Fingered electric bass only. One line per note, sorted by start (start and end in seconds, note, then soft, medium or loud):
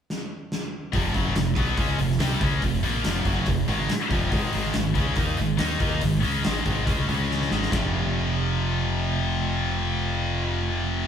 0.94 1.13 F1 loud
1.15 1.34 F#1 medium
1.36 1.56 F1 medium
1.57 1.76 B1 medium
1.77 1.97 C#2 medium
1.98 2.18 F1 medium
2.19 2.39 C2 loud
2.42 2.61 C#2 loud
2.63 2.82 F1 medium
2.84 3.03 A#1 medium
3.06 3.25 F1 medium
3.25 3.45 F#1 medium
3.47 3.67 F1 medium
3.68 3.88 G#1 loud
4.11 4.31 F1 medium
4.32 4.52 G#1 loud
4.55 4.74 G#1 medium
4.76 4.95 G#1 medium
4.96 5.16 C#2 medium
5.17 5.37 D#2 medium
5.40 5.59 G#1 medium
5.60 5.80 D#2 loud
5.81 6.01 D#2 loud
6.02 6.22 G#1 medium
6.24 6.43 C#2 medium
6.47 6.65 G#1 medium
6.66 6.86 G#1 medium
6.87 7.07 C#2 medium
7.09 7.48 C#2 loud
7.51 7.71 G#1 medium
7.72 11.07 F1 medium